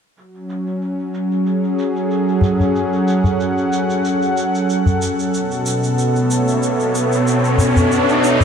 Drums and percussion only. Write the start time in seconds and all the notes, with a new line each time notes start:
0.17 shaker
0.35 shaker
0.49 shaker
0.67 shaker
0.82 shaker
0.99 shaker
1.14 shaker
1.31 shaker
1.46 shaker
1.64 shaker
1.79 shaker
1.96 shaker
2.11 shaker
2.28 shaker
2.41 udu, shaker
2.60 udu, shaker
2.75 shaker
2.93 shaker
3.07 shaker
3.24 udu, shaker
3.40 shaker
3.58 shaker
3.72 shaker
3.90 shaker
4.05 shaker
4.22 shaker
4.37 shaker
4.55 shaker
4.70 shaker
4.86 udu, shaker
5.02 shaker
5.19 shaker
5.34 shaker
5.51 shaker
5.66 shaker
5.83 shaker
5.98 shaker
6.16 shaker
6.31 shaker
6.48 shaker
6.63 shaker
6.80 shaker
6.95 shaker
7.12 shaker
7.27 shaker
7.44 shaker
7.58 udu, shaker
7.76 udu, shaker
7.91 shaker
8.09 shaker
8.24 shaker
8.40 udu, shaker